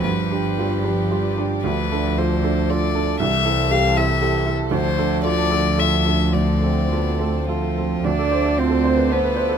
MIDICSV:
0, 0, Header, 1, 6, 480
1, 0, Start_track
1, 0, Tempo, 536193
1, 31, Time_signature, 3, 2, 24, 8
1, 1951, Tempo, 510638
1, 4831, Tempo, 561272
1, 7231, Tempo, 529568
1, 8617, End_track
2, 0, Start_track
2, 0, Title_t, "Violin"
2, 0, Program_c, 0, 40
2, 30, Note_on_c, 0, 71, 55
2, 1207, Note_off_c, 0, 71, 0
2, 1473, Note_on_c, 0, 71, 64
2, 1951, Note_on_c, 0, 72, 55
2, 1965, Note_off_c, 0, 71, 0
2, 2438, Note_on_c, 0, 74, 65
2, 2452, Note_off_c, 0, 72, 0
2, 2910, Note_off_c, 0, 74, 0
2, 2915, Note_on_c, 0, 76, 77
2, 3393, Note_on_c, 0, 77, 82
2, 3407, Note_off_c, 0, 76, 0
2, 3632, Note_on_c, 0, 76, 73
2, 3646, Note_off_c, 0, 77, 0
2, 4109, Note_off_c, 0, 76, 0
2, 4353, Note_on_c, 0, 72, 69
2, 4801, Note_off_c, 0, 72, 0
2, 4836, Note_on_c, 0, 74, 83
2, 5300, Note_on_c, 0, 76, 70
2, 5313, Note_off_c, 0, 74, 0
2, 5761, Note_on_c, 0, 74, 53
2, 5774, Note_off_c, 0, 76, 0
2, 6741, Note_off_c, 0, 74, 0
2, 6746, Note_on_c, 0, 65, 45
2, 7226, Note_on_c, 0, 74, 57
2, 7239, Note_off_c, 0, 65, 0
2, 7713, Note_on_c, 0, 72, 59
2, 7726, Note_off_c, 0, 74, 0
2, 8196, Note_on_c, 0, 71, 59
2, 8210, Note_off_c, 0, 72, 0
2, 8617, Note_off_c, 0, 71, 0
2, 8617, End_track
3, 0, Start_track
3, 0, Title_t, "String section"
3, 0, Program_c, 1, 48
3, 0, Note_on_c, 1, 53, 68
3, 28, Note_on_c, 1, 74, 44
3, 30, Note_on_c, 1, 67, 44
3, 1467, Note_on_c, 1, 69, 50
3, 1472, Note_off_c, 1, 67, 0
3, 2904, Note_on_c, 1, 55, 53
3, 2908, Note_on_c, 1, 72, 56
3, 2919, Note_off_c, 1, 53, 0
3, 2919, Note_off_c, 1, 74, 0
3, 4339, Note_off_c, 1, 55, 0
3, 4341, Note_off_c, 1, 72, 0
3, 4346, Note_on_c, 1, 53, 60
3, 4349, Note_on_c, 1, 74, 53
3, 5759, Note_on_c, 1, 72, 39
3, 5773, Note_off_c, 1, 74, 0
3, 7222, Note_off_c, 1, 53, 0
3, 7226, Note_off_c, 1, 69, 0
3, 7226, Note_off_c, 1, 72, 0
3, 7232, Note_on_c, 1, 53, 50
3, 7237, Note_on_c, 1, 69, 53
3, 7238, Note_on_c, 1, 74, 54
3, 8617, Note_off_c, 1, 53, 0
3, 8617, Note_off_c, 1, 69, 0
3, 8617, Note_off_c, 1, 74, 0
3, 8617, End_track
4, 0, Start_track
4, 0, Title_t, "Upright piano"
4, 0, Program_c, 2, 0
4, 0, Control_c, 2, 64, 127
4, 38, Note_on_c, 2, 43, 40
4, 49, Control_c, 2, 64, 0
4, 196, Control_c, 2, 64, 127
4, 279, Note_on_c, 2, 62, 33
4, 284, Note_on_c, 2, 67, 30
4, 493, Note_off_c, 2, 62, 0
4, 496, Note_off_c, 2, 67, 0
4, 522, Note_on_c, 2, 65, 32
4, 525, Note_on_c, 2, 67, 34
4, 732, Note_off_c, 2, 65, 0
4, 734, Note_off_c, 2, 67, 0
4, 751, Note_on_c, 2, 62, 34
4, 756, Note_on_c, 2, 67, 36
4, 966, Note_off_c, 2, 62, 0
4, 969, Note_off_c, 2, 67, 0
4, 989, Note_on_c, 2, 65, 30
4, 994, Note_on_c, 2, 67, 31
4, 1206, Note_off_c, 2, 65, 0
4, 1209, Note_off_c, 2, 67, 0
4, 1234, Note_on_c, 2, 62, 30
4, 1237, Note_on_c, 2, 67, 32
4, 1440, Note_off_c, 2, 43, 0
4, 1450, Note_off_c, 2, 62, 0
4, 1451, Note_off_c, 2, 67, 0
4, 1469, Note_on_c, 2, 38, 46
4, 1491, Control_c, 2, 64, 0
4, 1623, Control_c, 2, 64, 127
4, 1716, Note_on_c, 2, 62, 34
4, 1717, Note_on_c, 2, 69, 37
4, 1928, Note_off_c, 2, 62, 0
4, 1929, Note_off_c, 2, 69, 0
4, 1948, Note_on_c, 2, 65, 37
4, 1951, Note_on_c, 2, 69, 37
4, 2170, Note_off_c, 2, 65, 0
4, 2172, Note_off_c, 2, 69, 0
4, 2188, Note_on_c, 2, 62, 36
4, 2194, Note_on_c, 2, 69, 41
4, 2411, Note_off_c, 2, 62, 0
4, 2415, Note_off_c, 2, 69, 0
4, 2432, Note_on_c, 2, 65, 37
4, 2437, Note_on_c, 2, 69, 39
4, 2654, Note_off_c, 2, 65, 0
4, 2657, Note_off_c, 2, 69, 0
4, 2673, Note_on_c, 2, 62, 36
4, 2679, Note_on_c, 2, 69, 36
4, 2882, Note_off_c, 2, 38, 0
4, 2892, Note_off_c, 2, 62, 0
4, 2896, Note_off_c, 2, 69, 0
4, 2907, Note_on_c, 2, 36, 53
4, 2940, Control_c, 2, 64, 0
4, 3062, Control_c, 2, 64, 127
4, 3149, Note_on_c, 2, 64, 42
4, 3151, Note_on_c, 2, 69, 44
4, 3364, Note_off_c, 2, 64, 0
4, 3365, Note_off_c, 2, 69, 0
4, 3388, Note_on_c, 2, 67, 45
4, 3392, Note_on_c, 2, 69, 48
4, 3602, Note_off_c, 2, 67, 0
4, 3604, Note_off_c, 2, 69, 0
4, 3634, Note_on_c, 2, 64, 45
4, 3635, Note_on_c, 2, 69, 50
4, 3846, Note_off_c, 2, 64, 0
4, 3847, Note_off_c, 2, 69, 0
4, 3864, Note_on_c, 2, 67, 41
4, 3871, Note_on_c, 2, 69, 50
4, 4081, Note_off_c, 2, 67, 0
4, 4081, Note_off_c, 2, 69, 0
4, 4091, Note_on_c, 2, 64, 41
4, 4095, Note_on_c, 2, 69, 45
4, 4302, Note_off_c, 2, 36, 0
4, 4314, Note_off_c, 2, 64, 0
4, 4317, Note_off_c, 2, 69, 0
4, 4331, Note_on_c, 2, 38, 58
4, 4366, Control_c, 2, 64, 0
4, 4535, Control_c, 2, 64, 127
4, 4581, Note_on_c, 2, 62, 39
4, 4588, Note_on_c, 2, 69, 43
4, 4804, Note_off_c, 2, 62, 0
4, 4807, Note_off_c, 2, 69, 0
4, 4824, Note_on_c, 2, 65, 41
4, 4830, Note_on_c, 2, 69, 42
4, 5034, Note_off_c, 2, 65, 0
4, 5036, Note_off_c, 2, 69, 0
4, 5057, Note_on_c, 2, 62, 35
4, 5059, Note_on_c, 2, 69, 42
4, 5269, Note_off_c, 2, 62, 0
4, 5270, Note_off_c, 2, 69, 0
4, 5284, Note_on_c, 2, 65, 33
4, 5289, Note_on_c, 2, 69, 34
4, 5501, Note_off_c, 2, 65, 0
4, 5504, Note_off_c, 2, 69, 0
4, 5526, Note_on_c, 2, 62, 28
4, 5529, Note_on_c, 2, 69, 35
4, 5730, Note_off_c, 2, 38, 0
4, 5745, Note_off_c, 2, 62, 0
4, 5747, Note_off_c, 2, 69, 0
4, 5766, Note_on_c, 2, 38, 36
4, 5789, Control_c, 2, 64, 0
4, 5926, Control_c, 2, 64, 127
4, 6013, Note_on_c, 2, 60, 27
4, 6021, Note_on_c, 2, 69, 27
4, 6235, Note_off_c, 2, 60, 0
4, 6239, Note_off_c, 2, 69, 0
4, 6260, Note_on_c, 2, 65, 25
4, 6265, Note_on_c, 2, 69, 26
4, 6482, Note_off_c, 2, 65, 0
4, 6485, Note_off_c, 2, 69, 0
4, 6503, Note_on_c, 2, 60, 26
4, 6509, Note_on_c, 2, 69, 30
4, 6725, Note_off_c, 2, 60, 0
4, 6728, Note_off_c, 2, 69, 0
4, 6748, Note_on_c, 2, 69, 25
4, 6749, Note_on_c, 2, 65, 23
4, 6969, Note_off_c, 2, 65, 0
4, 6969, Note_off_c, 2, 69, 0
4, 6997, Note_on_c, 2, 60, 22
4, 7001, Note_on_c, 2, 69, 24
4, 7195, Note_off_c, 2, 38, 0
4, 7210, Note_off_c, 2, 60, 0
4, 7212, Note_off_c, 2, 69, 0
4, 7232, Note_on_c, 2, 38, 50
4, 7250, Control_c, 2, 64, 0
4, 7355, Note_on_c, 2, 69, 41
4, 7377, Control_c, 2, 64, 127
4, 7469, Note_on_c, 2, 72, 36
4, 7549, Note_off_c, 2, 69, 0
4, 7591, Note_on_c, 2, 69, 38
4, 7666, Note_off_c, 2, 72, 0
4, 7712, Note_on_c, 2, 65, 39
4, 7787, Note_off_c, 2, 69, 0
4, 7819, Note_on_c, 2, 69, 41
4, 7907, Note_off_c, 2, 65, 0
4, 7951, Note_on_c, 2, 72, 46
4, 8020, Note_off_c, 2, 69, 0
4, 8065, Note_on_c, 2, 71, 39
4, 8145, Note_off_c, 2, 72, 0
4, 8185, Note_on_c, 2, 72, 44
4, 8190, Note_off_c, 2, 71, 0
4, 8315, Note_on_c, 2, 71, 35
4, 8381, Note_off_c, 2, 72, 0
4, 8418, Note_on_c, 2, 72, 41
4, 8434, Note_off_c, 2, 71, 0
4, 8538, Note_on_c, 2, 69, 40
4, 8616, Note_off_c, 2, 72, 0
4, 8617, Note_off_c, 2, 38, 0
4, 8617, Note_off_c, 2, 69, 0
4, 8617, End_track
5, 0, Start_track
5, 0, Title_t, "Cello"
5, 0, Program_c, 3, 42
5, 0, Note_on_c, 3, 53, 72
5, 431, Note_off_c, 3, 53, 0
5, 527, Note_on_c, 3, 55, 50
5, 761, Note_on_c, 3, 53, 50
5, 774, Note_off_c, 3, 55, 0
5, 1008, Note_on_c, 3, 55, 43
5, 1022, Note_off_c, 3, 53, 0
5, 1251, Note_on_c, 3, 53, 40
5, 1264, Note_off_c, 3, 55, 0
5, 1464, Note_off_c, 3, 53, 0
5, 1469, Note_on_c, 3, 53, 51
5, 2882, Note_off_c, 3, 53, 0
5, 2924, Note_on_c, 3, 52, 59
5, 4320, Note_off_c, 3, 52, 0
5, 4340, Note_on_c, 3, 53, 60
5, 6174, Note_off_c, 3, 53, 0
5, 6257, Note_on_c, 3, 59, 43
5, 6501, Note_on_c, 3, 57, 35
5, 6514, Note_off_c, 3, 59, 0
5, 6734, Note_off_c, 3, 57, 0
5, 6740, Note_on_c, 3, 53, 54
5, 7225, Note_on_c, 3, 62, 73
5, 7238, Note_off_c, 3, 53, 0
5, 7715, Note_on_c, 3, 60, 66
5, 7729, Note_off_c, 3, 62, 0
5, 8185, Note_on_c, 3, 59, 62
5, 8199, Note_off_c, 3, 60, 0
5, 8617, Note_off_c, 3, 59, 0
5, 8617, End_track
6, 0, Start_track
6, 0, Title_t, "Double bass"
6, 0, Program_c, 4, 43
6, 42, Note_on_c, 4, 31, 52
6, 1476, Note_on_c, 4, 38, 51
6, 1489, Note_off_c, 4, 31, 0
6, 2917, Note_on_c, 4, 36, 61
6, 2931, Note_off_c, 4, 38, 0
6, 4338, Note_on_c, 4, 38, 62
6, 4352, Note_off_c, 4, 36, 0
6, 7224, Note_off_c, 4, 38, 0
6, 7229, Note_on_c, 4, 38, 54
6, 8617, Note_off_c, 4, 38, 0
6, 8617, End_track
0, 0, End_of_file